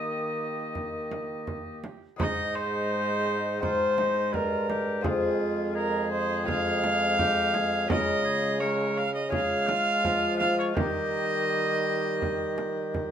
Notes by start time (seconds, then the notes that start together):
Already playing: D#3 A#3 G4 A#4 D#5
0.75 frame drum
1.12 frame drum
1.47 frame drum
1.84 frame drum
2.16 G#2 G#3 D#4 G#4 D#5, frame drum
2.21 G#2
2.55 C5
3.59 G#3 C4 D#4 F4 C5, frame drum
3.98 D#4, frame drum
4.33 G2 F4 A#4, frame drum
4.69 G4, frame drum
5.01 F2 G#3 C4 F4 G#4, frame drum
5.05 F4 G#4
5.75 G#4 A#4
6.12 C5
6.44 G#3 C4 F4
6.48 G#3 F5, frame drum
6.84 frame drum
7.19 G4, frame drum
7.54 G#4, frame drum
7.86 C#3 G#3 C#4 F4 G#4 A#4, frame drum
7.91 D#5
8.25 G#4
8.60 G#3 A#4 C#5
8.97 F5
9.15 D#5
9.29 G#3 C#4 F4 G#4 F5, frame drum
9.67 F4, frame drum
10.04 F3, frame drum
10.39 F5, frame drum
10.60 C#5
10.74 D#3 G3 A#3 G4 D#5, frame drum
12.22 frame drum
12.58 frame drum
12.94 frame drum